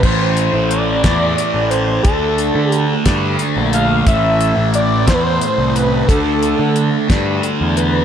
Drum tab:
CC |x-----|------|------|------|
HH |-xxxxx|xxxxxx|xxxxxx|xxxxxx|
SD |---o--|---o--|---o--|---o--|
BD |o--o--|o--o--|o--o--|o--o--|